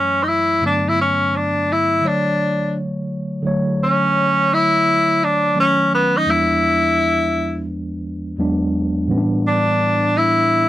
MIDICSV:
0, 0, Header, 1, 3, 480
1, 0, Start_track
1, 0, Tempo, 705882
1, 428, Time_signature, 4, 2, 24, 8
1, 7268, End_track
2, 0, Start_track
2, 0, Title_t, "Tenor saxophone"
2, 0, Program_c, 0, 66
2, 0, Note_on_c, 0, 61, 80
2, 158, Note_on_c, 0, 63, 64
2, 169, Note_off_c, 0, 61, 0
2, 195, Note_on_c, 0, 64, 92
2, 205, Note_off_c, 0, 63, 0
2, 432, Note_off_c, 0, 64, 0
2, 448, Note_on_c, 0, 62, 77
2, 604, Note_on_c, 0, 64, 83
2, 614, Note_off_c, 0, 62, 0
2, 678, Note_off_c, 0, 64, 0
2, 688, Note_on_c, 0, 61, 81
2, 927, Note_on_c, 0, 62, 81
2, 937, Note_off_c, 0, 61, 0
2, 1172, Note_on_c, 0, 64, 82
2, 1183, Note_off_c, 0, 62, 0
2, 1409, Note_on_c, 0, 62, 79
2, 1419, Note_off_c, 0, 64, 0
2, 1878, Note_off_c, 0, 62, 0
2, 2606, Note_on_c, 0, 61, 92
2, 3084, Note_on_c, 0, 64, 109
2, 3094, Note_off_c, 0, 61, 0
2, 3562, Note_on_c, 0, 62, 91
2, 3572, Note_off_c, 0, 64, 0
2, 3795, Note_off_c, 0, 62, 0
2, 3808, Note_on_c, 0, 61, 90
2, 4022, Note_off_c, 0, 61, 0
2, 4044, Note_on_c, 0, 59, 83
2, 4195, Note_on_c, 0, 63, 90
2, 4205, Note_off_c, 0, 59, 0
2, 4287, Note_on_c, 0, 64, 94
2, 4297, Note_off_c, 0, 63, 0
2, 5237, Note_off_c, 0, 64, 0
2, 6441, Note_on_c, 0, 62, 85
2, 6919, Note_on_c, 0, 64, 91
2, 6929, Note_off_c, 0, 62, 0
2, 7268, Note_off_c, 0, 64, 0
2, 7268, End_track
3, 0, Start_track
3, 0, Title_t, "Tine electric piano"
3, 0, Program_c, 1, 4
3, 0, Note_on_c, 1, 42, 67
3, 0, Note_on_c, 1, 52, 57
3, 0, Note_on_c, 1, 54, 61
3, 0, Note_on_c, 1, 57, 60
3, 0, Note_on_c, 1, 73, 70
3, 393, Note_off_c, 1, 42, 0
3, 395, Note_off_c, 1, 52, 0
3, 399, Note_off_c, 1, 54, 0
3, 404, Note_off_c, 1, 57, 0
3, 406, Note_off_c, 1, 73, 0
3, 412, Note_on_c, 1, 43, 66
3, 417, Note_on_c, 1, 50, 56
3, 421, Note_on_c, 1, 54, 56
3, 430, Note_on_c, 1, 57, 59
3, 436, Note_on_c, 1, 59, 65
3, 1361, Note_off_c, 1, 43, 0
3, 1363, Note_off_c, 1, 50, 0
3, 1365, Note_off_c, 1, 54, 0
3, 1370, Note_off_c, 1, 57, 0
3, 1372, Note_on_c, 1, 50, 62
3, 1373, Note_off_c, 1, 59, 0
3, 1382, Note_on_c, 1, 54, 58
3, 1391, Note_on_c, 1, 57, 52
3, 1396, Note_on_c, 1, 73, 67
3, 2321, Note_off_c, 1, 50, 0
3, 2326, Note_off_c, 1, 54, 0
3, 2330, Note_off_c, 1, 57, 0
3, 2330, Note_on_c, 1, 50, 77
3, 2333, Note_off_c, 1, 73, 0
3, 2341, Note_on_c, 1, 54, 69
3, 2351, Note_on_c, 1, 57, 71
3, 2358, Note_on_c, 1, 73, 86
3, 3752, Note_off_c, 1, 50, 0
3, 3757, Note_off_c, 1, 54, 0
3, 3762, Note_off_c, 1, 57, 0
3, 3766, Note_off_c, 1, 73, 0
3, 3775, Note_on_c, 1, 51, 63
3, 3778, Note_on_c, 1, 54, 54
3, 3785, Note_on_c, 1, 57, 54
3, 3788, Note_on_c, 1, 61, 69
3, 4258, Note_on_c, 1, 40, 65
3, 4262, Note_off_c, 1, 51, 0
3, 4262, Note_on_c, 1, 53, 62
3, 4263, Note_off_c, 1, 54, 0
3, 4266, Note_off_c, 1, 57, 0
3, 4268, Note_off_c, 1, 61, 0
3, 4271, Note_on_c, 1, 56, 60
3, 4276, Note_on_c, 1, 59, 64
3, 4283, Note_on_c, 1, 62, 69
3, 5676, Note_off_c, 1, 40, 0
3, 5678, Note_off_c, 1, 53, 0
3, 5682, Note_off_c, 1, 56, 0
3, 5685, Note_off_c, 1, 59, 0
3, 5688, Note_off_c, 1, 62, 0
3, 5702, Note_on_c, 1, 40, 80
3, 5704, Note_on_c, 1, 54, 66
3, 5708, Note_on_c, 1, 56, 68
3, 5710, Note_on_c, 1, 59, 75
3, 5716, Note_on_c, 1, 62, 88
3, 6171, Note_on_c, 1, 45, 78
3, 6179, Note_on_c, 1, 52, 71
3, 6185, Note_off_c, 1, 40, 0
3, 6185, Note_off_c, 1, 59, 0
3, 6185, Note_on_c, 1, 55, 72
3, 6186, Note_off_c, 1, 54, 0
3, 6188, Note_off_c, 1, 56, 0
3, 6192, Note_off_c, 1, 62, 0
3, 6193, Note_on_c, 1, 59, 74
3, 6199, Note_on_c, 1, 61, 72
3, 6239, Note_on_c, 1, 62, 90
3, 6251, Note_off_c, 1, 61, 0
3, 7268, Note_off_c, 1, 45, 0
3, 7268, Note_off_c, 1, 52, 0
3, 7268, Note_off_c, 1, 55, 0
3, 7268, Note_off_c, 1, 59, 0
3, 7268, Note_off_c, 1, 62, 0
3, 7268, End_track
0, 0, End_of_file